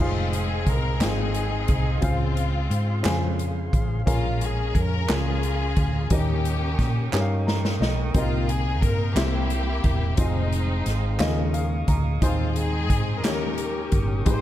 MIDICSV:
0, 0, Header, 1, 6, 480
1, 0, Start_track
1, 0, Tempo, 679502
1, 1437, Time_signature, 6, 3, 24, 8
1, 10181, End_track
2, 0, Start_track
2, 0, Title_t, "Tonewheel organ"
2, 0, Program_c, 0, 16
2, 0, Note_on_c, 0, 68, 53
2, 0, Note_on_c, 0, 75, 47
2, 0, Note_on_c, 0, 77, 46
2, 0, Note_on_c, 0, 84, 61
2, 1416, Note_off_c, 0, 75, 0
2, 2841, Note_off_c, 0, 84, 0
2, 2843, Note_off_c, 0, 68, 0
2, 2882, Note_on_c, 0, 82, 54
2, 2883, Note_on_c, 0, 68, 55
2, 4281, Note_off_c, 0, 77, 0
2, 4304, Note_off_c, 0, 82, 0
2, 4305, Note_off_c, 0, 68, 0
2, 4320, Note_on_c, 0, 79, 52
2, 4320, Note_on_c, 0, 87, 58
2, 4322, Note_on_c, 0, 70, 52
2, 4323, Note_on_c, 0, 85, 50
2, 5745, Note_off_c, 0, 85, 0
2, 5758, Note_on_c, 0, 84, 50
2, 6456, Note_off_c, 0, 87, 0
2, 6474, Note_on_c, 0, 88, 65
2, 7169, Note_off_c, 0, 79, 0
2, 7170, Note_off_c, 0, 70, 0
2, 7182, Note_off_c, 0, 84, 0
2, 7187, Note_off_c, 0, 88, 0
2, 7203, Note_on_c, 0, 68, 57
2, 7205, Note_on_c, 0, 77, 48
2, 7206, Note_on_c, 0, 87, 66
2, 7207, Note_on_c, 0, 84, 47
2, 7914, Note_off_c, 0, 84, 0
2, 8626, Note_off_c, 0, 77, 0
2, 8634, Note_on_c, 0, 75, 54
2, 8637, Note_on_c, 0, 84, 49
2, 9339, Note_off_c, 0, 68, 0
2, 9348, Note_off_c, 0, 75, 0
2, 9350, Note_off_c, 0, 84, 0
2, 9353, Note_on_c, 0, 79, 59
2, 9356, Note_on_c, 0, 70, 63
2, 10070, Note_off_c, 0, 70, 0
2, 10073, Note_on_c, 0, 56, 52
2, 10076, Note_on_c, 0, 84, 53
2, 10181, Note_off_c, 0, 56, 0
2, 10181, Note_off_c, 0, 79, 0
2, 10181, Note_off_c, 0, 84, 0
2, 10181, Note_off_c, 0, 87, 0
2, 10181, End_track
3, 0, Start_track
3, 0, Title_t, "Grand piano"
3, 0, Program_c, 1, 0
3, 0, Control_c, 1, 64, 127
3, 0, Note_on_c, 1, 63, 62
3, 0, Note_on_c, 1, 65, 63
3, 0, Note_on_c, 1, 73, 44
3, 0, Note_on_c, 1, 82, 51
3, 5, Control_c, 1, 64, 0
3, 6, Note_on_c, 1, 68, 66
3, 8, Note_on_c, 1, 72, 55
3, 11, Note_on_c, 1, 77, 67
3, 105, Note_off_c, 1, 82, 0
3, 107, Note_off_c, 1, 73, 0
3, 126, Control_c, 1, 64, 127
3, 636, Note_off_c, 1, 63, 0
3, 639, Note_off_c, 1, 65, 0
3, 642, Note_off_c, 1, 68, 0
3, 643, Note_off_c, 1, 72, 0
3, 644, Note_off_c, 1, 77, 0
3, 708, Note_on_c, 1, 63, 59
3, 710, Note_on_c, 1, 65, 55
3, 714, Note_on_c, 1, 68, 58
3, 719, Note_on_c, 1, 72, 51
3, 722, Note_on_c, 1, 79, 62
3, 1353, Note_off_c, 1, 63, 0
3, 1354, Note_off_c, 1, 65, 0
3, 1356, Note_off_c, 1, 68, 0
3, 1358, Note_off_c, 1, 72, 0
3, 1360, Note_off_c, 1, 79, 0
3, 1422, Note_on_c, 1, 60, 67
3, 1427, Note_on_c, 1, 49, 52
3, 1428, Note_on_c, 1, 65, 60
3, 1430, Note_on_c, 1, 68, 58
3, 1433, Note_on_c, 1, 72, 64
3, 1438, Note_on_c, 1, 77, 80
3, 1446, Control_c, 1, 64, 0
3, 1564, Control_c, 1, 64, 127
3, 2070, Note_off_c, 1, 60, 0
3, 2073, Note_off_c, 1, 65, 0
3, 2074, Note_off_c, 1, 68, 0
3, 2075, Note_off_c, 1, 72, 0
3, 2078, Note_off_c, 1, 77, 0
3, 2123, Note_off_c, 1, 49, 0
3, 2141, Note_on_c, 1, 49, 70
3, 2147, Note_on_c, 1, 65, 64
3, 2152, Note_on_c, 1, 72, 68
3, 2153, Note_on_c, 1, 68, 69
3, 2156, Note_on_c, 1, 80, 81
3, 2789, Note_off_c, 1, 49, 0
3, 2792, Note_off_c, 1, 65, 0
3, 2794, Note_off_c, 1, 72, 0
3, 2795, Note_off_c, 1, 68, 0
3, 2796, Note_off_c, 1, 80, 0
3, 2867, Note_on_c, 1, 61, 68
3, 2872, Note_on_c, 1, 65, 64
3, 2874, Note_on_c, 1, 68, 62
3, 2875, Note_on_c, 1, 46, 58
3, 2877, Note_on_c, 1, 70, 66
3, 2877, Note_on_c, 1, 77, 76
3, 2886, Control_c, 1, 64, 0
3, 2998, Control_c, 1, 64, 127
3, 3512, Note_off_c, 1, 61, 0
3, 3514, Note_off_c, 1, 65, 0
3, 3515, Note_off_c, 1, 68, 0
3, 3517, Note_off_c, 1, 70, 0
3, 3517, Note_off_c, 1, 77, 0
3, 3567, Note_off_c, 1, 46, 0
3, 3592, Note_on_c, 1, 61, 54
3, 3595, Note_on_c, 1, 65, 58
3, 3599, Note_on_c, 1, 68, 58
3, 3599, Note_on_c, 1, 70, 52
3, 3603, Note_on_c, 1, 80, 67
3, 4234, Note_off_c, 1, 61, 0
3, 4236, Note_off_c, 1, 65, 0
3, 4237, Note_off_c, 1, 68, 0
3, 4238, Note_off_c, 1, 70, 0
3, 4240, Note_off_c, 1, 80, 0
3, 4312, Note_on_c, 1, 61, 63
3, 4314, Note_on_c, 1, 63, 62
3, 4318, Note_on_c, 1, 51, 54
3, 4322, Note_on_c, 1, 67, 57
3, 4322, Note_on_c, 1, 70, 63
3, 4326, Control_c, 1, 64, 0
3, 4326, Note_on_c, 1, 75, 71
3, 4468, Control_c, 1, 64, 127
3, 4954, Note_off_c, 1, 61, 0
3, 4955, Note_off_c, 1, 63, 0
3, 4959, Note_off_c, 1, 67, 0
3, 4959, Note_off_c, 1, 70, 0
3, 4961, Note_off_c, 1, 75, 0
3, 5008, Note_off_c, 1, 51, 0
3, 5033, Note_on_c, 1, 63, 68
3, 5035, Note_on_c, 1, 61, 71
3, 5041, Note_on_c, 1, 67, 64
3, 5044, Note_on_c, 1, 70, 62
3, 5044, Note_on_c, 1, 75, 61
3, 5085, Note_off_c, 1, 75, 0
3, 5089, Note_on_c, 1, 77, 76
3, 5277, Note_on_c, 1, 82, 59
3, 5499, Note_off_c, 1, 82, 0
3, 5516, Note_on_c, 1, 75, 66
3, 5675, Note_off_c, 1, 61, 0
3, 5675, Note_off_c, 1, 63, 0
3, 5678, Note_off_c, 1, 67, 0
3, 5680, Note_off_c, 1, 70, 0
3, 5702, Note_off_c, 1, 77, 0
3, 5739, Note_off_c, 1, 75, 0
3, 5753, Note_on_c, 1, 60, 65
3, 5757, Note_on_c, 1, 63, 65
3, 5759, Note_on_c, 1, 48, 54
3, 5762, Note_on_c, 1, 79, 58
3, 5764, Control_c, 1, 64, 0
3, 5764, Note_on_c, 1, 70, 60
3, 5768, Note_on_c, 1, 75, 74
3, 5892, Control_c, 1, 64, 127
3, 6394, Note_off_c, 1, 60, 0
3, 6397, Note_off_c, 1, 63, 0
3, 6399, Note_off_c, 1, 79, 0
3, 6400, Note_off_c, 1, 70, 0
3, 6402, Note_off_c, 1, 75, 0
3, 6449, Note_off_c, 1, 48, 0
3, 6469, Note_on_c, 1, 60, 60
3, 6470, Note_on_c, 1, 64, 57
3, 6472, Note_on_c, 1, 67, 57
3, 6473, Note_on_c, 1, 48, 55
3, 6478, Note_on_c, 1, 70, 53
3, 6478, Note_on_c, 1, 76, 66
3, 6484, Control_c, 1, 64, 0
3, 6611, Control_c, 1, 64, 127
3, 7112, Note_off_c, 1, 60, 0
3, 7113, Note_off_c, 1, 64, 0
3, 7114, Note_off_c, 1, 67, 0
3, 7117, Note_off_c, 1, 70, 0
3, 7117, Note_off_c, 1, 76, 0
3, 7166, Note_off_c, 1, 48, 0
3, 7187, Note_on_c, 1, 60, 72
3, 7190, Note_on_c, 1, 63, 64
3, 7191, Note_on_c, 1, 65, 62
3, 7199, Note_on_c, 1, 68, 66
3, 7200, Note_on_c, 1, 75, 75
3, 7205, Control_c, 1, 64, 0
3, 7316, Control_c, 1, 64, 127
3, 7831, Note_off_c, 1, 60, 0
3, 7833, Note_off_c, 1, 63, 0
3, 7834, Note_off_c, 1, 65, 0
3, 7838, Note_off_c, 1, 68, 0
3, 7838, Note_off_c, 1, 75, 0
3, 7904, Note_on_c, 1, 58, 74
3, 7908, Note_on_c, 1, 63, 66
3, 7911, Note_on_c, 1, 49, 73
3, 7912, Note_on_c, 1, 65, 67
3, 7915, Note_on_c, 1, 68, 66
3, 7918, Note_on_c, 1, 75, 79
3, 7924, Control_c, 1, 64, 0
3, 8049, Control_c, 1, 64, 127
3, 8150, Note_on_c, 1, 77, 70
3, 8376, Note_off_c, 1, 77, 0
3, 8394, Note_on_c, 1, 82, 65
3, 8550, Note_off_c, 1, 58, 0
3, 8552, Note_off_c, 1, 63, 0
3, 8554, Note_off_c, 1, 65, 0
3, 8556, Note_off_c, 1, 68, 0
3, 8557, Note_off_c, 1, 75, 0
3, 8605, Note_off_c, 1, 49, 0
3, 8618, Note_off_c, 1, 82, 0
3, 8628, Note_on_c, 1, 63, 69
3, 8633, Note_on_c, 1, 51, 56
3, 8636, Note_on_c, 1, 68, 71
3, 8642, Note_on_c, 1, 72, 81
3, 8646, Control_c, 1, 64, 0
3, 8761, Control_c, 1, 64, 127
3, 9273, Note_off_c, 1, 63, 0
3, 9277, Note_off_c, 1, 68, 0
3, 9280, Note_off_c, 1, 72, 0
3, 9327, Note_off_c, 1, 51, 0
3, 9353, Note_on_c, 1, 58, 61
3, 9356, Note_on_c, 1, 51, 60
3, 9357, Note_on_c, 1, 61, 58
3, 9359, Note_on_c, 1, 63, 62
3, 9362, Note_on_c, 1, 67, 57
3, 9364, Control_c, 1, 64, 0
3, 9366, Note_on_c, 1, 73, 68
3, 9496, Control_c, 1, 64, 127
3, 9996, Note_off_c, 1, 58, 0
3, 9998, Note_off_c, 1, 61, 0
3, 9999, Note_off_c, 1, 63, 0
3, 10001, Note_off_c, 1, 67, 0
3, 10002, Note_off_c, 1, 73, 0
3, 10049, Note_off_c, 1, 51, 0
3, 10068, Note_on_c, 1, 60, 64
3, 10070, Note_on_c, 1, 56, 73
3, 10074, Note_on_c, 1, 44, 55
3, 10075, Note_on_c, 1, 63, 67
3, 10076, Note_on_c, 1, 67, 60
3, 10081, Note_on_c, 1, 71, 63
3, 10087, Control_c, 1, 64, 0
3, 10125, Note_off_c, 1, 71, 0
3, 10127, Note_on_c, 1, 72, 87
3, 10181, Note_off_c, 1, 44, 0
3, 10181, Note_off_c, 1, 56, 0
3, 10181, Note_off_c, 1, 60, 0
3, 10181, Note_off_c, 1, 63, 0
3, 10181, Note_off_c, 1, 67, 0
3, 10181, Note_off_c, 1, 72, 0
3, 10181, End_track
4, 0, Start_track
4, 0, Title_t, "String section"
4, 0, Program_c, 2, 48
4, 7, Note_on_c, 2, 65, 77
4, 9, Note_on_c, 2, 56, 65
4, 11, Note_on_c, 2, 60, 63
4, 225, Note_off_c, 2, 65, 0
4, 246, Note_on_c, 2, 68, 88
4, 482, Note_off_c, 2, 68, 0
4, 489, Note_on_c, 2, 70, 87
4, 695, Note_off_c, 2, 56, 0
4, 696, Note_off_c, 2, 60, 0
4, 721, Note_on_c, 2, 68, 88
4, 723, Note_off_c, 2, 70, 0
4, 725, Note_on_c, 2, 60, 64
4, 729, Note_on_c, 2, 63, 63
4, 1413, Note_off_c, 2, 60, 0
4, 1414, Note_off_c, 2, 63, 0
4, 1438, Note_on_c, 2, 65, 82
4, 1439, Note_off_c, 2, 68, 0
4, 1441, Note_on_c, 2, 60, 65
4, 1444, Note_on_c, 2, 56, 62
4, 2370, Note_off_c, 2, 60, 0
4, 2372, Note_off_c, 2, 56, 0
4, 2397, Note_off_c, 2, 65, 0
4, 2882, Note_on_c, 2, 56, 69
4, 2886, Note_on_c, 2, 61, 63
4, 2898, Note_on_c, 2, 65, 96
4, 3111, Note_off_c, 2, 65, 0
4, 3133, Note_on_c, 2, 68, 88
4, 3365, Note_off_c, 2, 68, 0
4, 3372, Note_on_c, 2, 70, 99
4, 3570, Note_off_c, 2, 56, 0
4, 3573, Note_off_c, 2, 61, 0
4, 3604, Note_off_c, 2, 70, 0
4, 3610, Note_on_c, 2, 65, 68
4, 3613, Note_on_c, 2, 61, 68
4, 3615, Note_on_c, 2, 68, 93
4, 4294, Note_off_c, 2, 65, 0
4, 4296, Note_off_c, 2, 61, 0
4, 4325, Note_off_c, 2, 68, 0
4, 4326, Note_on_c, 2, 58, 61
4, 4330, Note_on_c, 2, 67, 84
4, 4331, Note_on_c, 2, 61, 64
4, 5252, Note_off_c, 2, 58, 0
4, 5254, Note_off_c, 2, 67, 0
4, 5255, Note_off_c, 2, 61, 0
4, 5774, Note_on_c, 2, 58, 65
4, 5777, Note_on_c, 2, 65, 88
4, 5990, Note_off_c, 2, 65, 0
4, 6006, Note_on_c, 2, 68, 92
4, 6240, Note_off_c, 2, 68, 0
4, 6245, Note_on_c, 2, 70, 90
4, 6456, Note_off_c, 2, 58, 0
4, 6480, Note_off_c, 2, 70, 0
4, 6485, Note_on_c, 2, 58, 65
4, 6485, Note_on_c, 2, 64, 70
4, 6491, Note_on_c, 2, 67, 88
4, 7172, Note_off_c, 2, 58, 0
4, 7172, Note_off_c, 2, 64, 0
4, 7203, Note_off_c, 2, 67, 0
4, 7203, Note_on_c, 2, 56, 64
4, 7203, Note_on_c, 2, 60, 64
4, 7206, Note_on_c, 2, 63, 82
4, 8131, Note_off_c, 2, 56, 0
4, 8131, Note_off_c, 2, 60, 0
4, 8161, Note_off_c, 2, 63, 0
4, 8642, Note_on_c, 2, 65, 81
4, 8645, Note_on_c, 2, 60, 54
4, 8646, Note_on_c, 2, 56, 59
4, 8862, Note_off_c, 2, 65, 0
4, 8866, Note_on_c, 2, 68, 98
4, 8869, Note_off_c, 2, 60, 0
4, 8873, Note_on_c, 2, 63, 64
4, 8878, Note_on_c, 2, 60, 68
4, 9327, Note_off_c, 2, 63, 0
4, 9329, Note_off_c, 2, 60, 0
4, 9333, Note_off_c, 2, 56, 0
4, 9346, Note_on_c, 2, 70, 91
4, 9351, Note_off_c, 2, 68, 0
4, 9361, Note_on_c, 2, 61, 68
4, 9364, Note_on_c, 2, 67, 73
4, 9832, Note_off_c, 2, 70, 0
4, 10051, Note_off_c, 2, 61, 0
4, 10053, Note_off_c, 2, 67, 0
4, 10088, Note_on_c, 2, 72, 121
4, 10091, Note_on_c, 2, 67, 87
4, 10093, Note_on_c, 2, 63, 84
4, 10181, Note_off_c, 2, 63, 0
4, 10181, Note_off_c, 2, 67, 0
4, 10181, Note_off_c, 2, 72, 0
4, 10181, End_track
5, 0, Start_track
5, 0, Title_t, "Fingered electric bass"
5, 0, Program_c, 3, 33
5, 0, Note_on_c, 3, 29, 81
5, 447, Note_off_c, 3, 29, 0
5, 470, Note_on_c, 3, 36, 73
5, 707, Note_on_c, 3, 32, 74
5, 718, Note_off_c, 3, 36, 0
5, 1164, Note_off_c, 3, 32, 0
5, 1195, Note_on_c, 3, 36, 84
5, 1416, Note_off_c, 3, 36, 0
5, 1431, Note_on_c, 3, 37, 83
5, 1886, Note_off_c, 3, 37, 0
5, 1910, Note_on_c, 3, 44, 92
5, 2134, Note_off_c, 3, 44, 0
5, 2153, Note_on_c, 3, 41, 78
5, 2606, Note_off_c, 3, 41, 0
5, 2634, Note_on_c, 3, 33, 69
5, 2856, Note_off_c, 3, 33, 0
5, 2874, Note_on_c, 3, 34, 84
5, 3327, Note_off_c, 3, 34, 0
5, 3353, Note_on_c, 3, 41, 84
5, 3575, Note_off_c, 3, 41, 0
5, 3598, Note_on_c, 3, 37, 81
5, 4048, Note_off_c, 3, 37, 0
5, 4075, Note_on_c, 3, 38, 73
5, 4296, Note_off_c, 3, 38, 0
5, 4314, Note_on_c, 3, 39, 93
5, 4766, Note_off_c, 3, 39, 0
5, 4796, Note_on_c, 3, 46, 88
5, 5016, Note_off_c, 3, 46, 0
5, 5036, Note_on_c, 3, 43, 77
5, 5487, Note_off_c, 3, 43, 0
5, 5510, Note_on_c, 3, 35, 74
5, 5733, Note_off_c, 3, 35, 0
5, 5754, Note_on_c, 3, 36, 84
5, 6233, Note_off_c, 3, 36, 0
5, 6233, Note_on_c, 3, 43, 77
5, 6455, Note_off_c, 3, 43, 0
5, 6466, Note_on_c, 3, 36, 91
5, 6922, Note_off_c, 3, 36, 0
5, 6950, Note_on_c, 3, 28, 81
5, 7173, Note_off_c, 3, 28, 0
5, 7192, Note_on_c, 3, 29, 92
5, 7645, Note_off_c, 3, 29, 0
5, 7673, Note_on_c, 3, 32, 74
5, 7895, Note_off_c, 3, 32, 0
5, 7909, Note_on_c, 3, 39, 101
5, 8364, Note_off_c, 3, 39, 0
5, 8392, Note_on_c, 3, 38, 86
5, 8614, Note_off_c, 3, 38, 0
5, 8631, Note_on_c, 3, 39, 105
5, 9112, Note_off_c, 3, 39, 0
5, 9112, Note_on_c, 3, 44, 84
5, 9345, Note_off_c, 3, 44, 0
5, 9345, Note_on_c, 3, 39, 92
5, 9803, Note_off_c, 3, 39, 0
5, 9832, Note_on_c, 3, 31, 88
5, 10055, Note_off_c, 3, 31, 0
5, 10073, Note_on_c, 3, 32, 91
5, 10181, Note_off_c, 3, 32, 0
5, 10181, End_track
6, 0, Start_track
6, 0, Title_t, "Drums"
6, 235, Note_on_c, 9, 42, 53
6, 305, Note_off_c, 9, 42, 0
6, 471, Note_on_c, 9, 36, 71
6, 471, Note_on_c, 9, 42, 49
6, 541, Note_off_c, 9, 36, 0
6, 541, Note_off_c, 9, 42, 0
6, 708, Note_on_c, 9, 42, 63
6, 715, Note_on_c, 9, 38, 98
6, 715, Note_on_c, 9, 39, 87
6, 779, Note_off_c, 9, 42, 0
6, 786, Note_off_c, 9, 38, 0
6, 786, Note_off_c, 9, 39, 0
6, 949, Note_on_c, 9, 42, 45
6, 1020, Note_off_c, 9, 42, 0
6, 1187, Note_on_c, 9, 42, 51
6, 1192, Note_on_c, 9, 36, 74
6, 1257, Note_off_c, 9, 42, 0
6, 1263, Note_off_c, 9, 36, 0
6, 1428, Note_on_c, 9, 42, 80
6, 1432, Note_on_c, 9, 36, 101
6, 1498, Note_off_c, 9, 42, 0
6, 1503, Note_off_c, 9, 36, 0
6, 1673, Note_on_c, 9, 42, 50
6, 1744, Note_off_c, 9, 42, 0
6, 1915, Note_on_c, 9, 42, 46
6, 1986, Note_off_c, 9, 42, 0
6, 2154, Note_on_c, 9, 39, 91
6, 2155, Note_on_c, 9, 42, 62
6, 2162, Note_on_c, 9, 38, 99
6, 2224, Note_off_c, 9, 39, 0
6, 2225, Note_off_c, 9, 42, 0
6, 2232, Note_off_c, 9, 38, 0
6, 2397, Note_on_c, 9, 42, 45
6, 2467, Note_off_c, 9, 42, 0
6, 2636, Note_on_c, 9, 36, 77
6, 2637, Note_on_c, 9, 42, 50
6, 2707, Note_off_c, 9, 36, 0
6, 2708, Note_off_c, 9, 42, 0
6, 2876, Note_on_c, 9, 36, 101
6, 2877, Note_on_c, 9, 42, 89
6, 2946, Note_off_c, 9, 36, 0
6, 2948, Note_off_c, 9, 42, 0
6, 3117, Note_on_c, 9, 42, 50
6, 3188, Note_off_c, 9, 42, 0
6, 3355, Note_on_c, 9, 36, 71
6, 3356, Note_on_c, 9, 42, 50
6, 3425, Note_off_c, 9, 36, 0
6, 3427, Note_off_c, 9, 42, 0
6, 3592, Note_on_c, 9, 42, 55
6, 3599, Note_on_c, 9, 38, 96
6, 3599, Note_on_c, 9, 39, 92
6, 3663, Note_off_c, 9, 42, 0
6, 3669, Note_off_c, 9, 39, 0
6, 3670, Note_off_c, 9, 38, 0
6, 3836, Note_on_c, 9, 42, 47
6, 3907, Note_off_c, 9, 42, 0
6, 4073, Note_on_c, 9, 42, 48
6, 4075, Note_on_c, 9, 36, 78
6, 4143, Note_off_c, 9, 42, 0
6, 4146, Note_off_c, 9, 36, 0
6, 4311, Note_on_c, 9, 42, 82
6, 4315, Note_on_c, 9, 36, 109
6, 4382, Note_off_c, 9, 42, 0
6, 4386, Note_off_c, 9, 36, 0
6, 4558, Note_on_c, 9, 42, 53
6, 4629, Note_off_c, 9, 42, 0
6, 4795, Note_on_c, 9, 36, 74
6, 4796, Note_on_c, 9, 42, 49
6, 4806, Note_on_c, 9, 38, 33
6, 4866, Note_off_c, 9, 36, 0
6, 4867, Note_off_c, 9, 42, 0
6, 4877, Note_off_c, 9, 38, 0
6, 5038, Note_on_c, 9, 39, 86
6, 5047, Note_on_c, 9, 38, 45
6, 5109, Note_off_c, 9, 39, 0
6, 5118, Note_off_c, 9, 38, 0
6, 5284, Note_on_c, 9, 38, 72
6, 5354, Note_off_c, 9, 38, 0
6, 5403, Note_on_c, 9, 38, 66
6, 5473, Note_off_c, 9, 38, 0
6, 5525, Note_on_c, 9, 38, 81
6, 5596, Note_off_c, 9, 38, 0
6, 5754, Note_on_c, 9, 42, 82
6, 5755, Note_on_c, 9, 36, 111
6, 5824, Note_off_c, 9, 42, 0
6, 5825, Note_off_c, 9, 36, 0
6, 5997, Note_on_c, 9, 42, 53
6, 6067, Note_off_c, 9, 42, 0
6, 6233, Note_on_c, 9, 36, 75
6, 6235, Note_on_c, 9, 42, 52
6, 6304, Note_off_c, 9, 36, 0
6, 6306, Note_off_c, 9, 42, 0
6, 6472, Note_on_c, 9, 42, 60
6, 6477, Note_on_c, 9, 39, 94
6, 6479, Note_on_c, 9, 38, 91
6, 6543, Note_off_c, 9, 42, 0
6, 6547, Note_off_c, 9, 39, 0
6, 6550, Note_off_c, 9, 38, 0
6, 6712, Note_on_c, 9, 42, 47
6, 6782, Note_off_c, 9, 42, 0
6, 6950, Note_on_c, 9, 42, 48
6, 6952, Note_on_c, 9, 36, 84
6, 7021, Note_off_c, 9, 42, 0
6, 7023, Note_off_c, 9, 36, 0
6, 7187, Note_on_c, 9, 42, 84
6, 7191, Note_on_c, 9, 36, 116
6, 7257, Note_off_c, 9, 42, 0
6, 7262, Note_off_c, 9, 36, 0
6, 7435, Note_on_c, 9, 42, 51
6, 7505, Note_off_c, 9, 42, 0
6, 7671, Note_on_c, 9, 42, 53
6, 7682, Note_on_c, 9, 38, 34
6, 7742, Note_off_c, 9, 42, 0
6, 7752, Note_off_c, 9, 38, 0
6, 7910, Note_on_c, 9, 39, 86
6, 7911, Note_on_c, 9, 42, 57
6, 7918, Note_on_c, 9, 38, 103
6, 7981, Note_off_c, 9, 39, 0
6, 7981, Note_off_c, 9, 42, 0
6, 7989, Note_off_c, 9, 38, 0
6, 8151, Note_on_c, 9, 42, 51
6, 8222, Note_off_c, 9, 42, 0
6, 8391, Note_on_c, 9, 42, 53
6, 8392, Note_on_c, 9, 36, 77
6, 8462, Note_off_c, 9, 42, 0
6, 8463, Note_off_c, 9, 36, 0
6, 8632, Note_on_c, 9, 36, 117
6, 8632, Note_on_c, 9, 42, 85
6, 8703, Note_off_c, 9, 36, 0
6, 8703, Note_off_c, 9, 42, 0
6, 8871, Note_on_c, 9, 42, 54
6, 8942, Note_off_c, 9, 42, 0
6, 9112, Note_on_c, 9, 36, 80
6, 9112, Note_on_c, 9, 42, 53
6, 9183, Note_off_c, 9, 36, 0
6, 9183, Note_off_c, 9, 42, 0
6, 9350, Note_on_c, 9, 42, 62
6, 9357, Note_on_c, 9, 38, 94
6, 9361, Note_on_c, 9, 39, 97
6, 9421, Note_off_c, 9, 42, 0
6, 9428, Note_off_c, 9, 38, 0
6, 9432, Note_off_c, 9, 39, 0
6, 9591, Note_on_c, 9, 42, 49
6, 9661, Note_off_c, 9, 42, 0
6, 9832, Note_on_c, 9, 42, 53
6, 9836, Note_on_c, 9, 36, 80
6, 9902, Note_off_c, 9, 42, 0
6, 9906, Note_off_c, 9, 36, 0
6, 10073, Note_on_c, 9, 42, 90
6, 10076, Note_on_c, 9, 36, 116
6, 10143, Note_off_c, 9, 42, 0
6, 10146, Note_off_c, 9, 36, 0
6, 10181, End_track
0, 0, End_of_file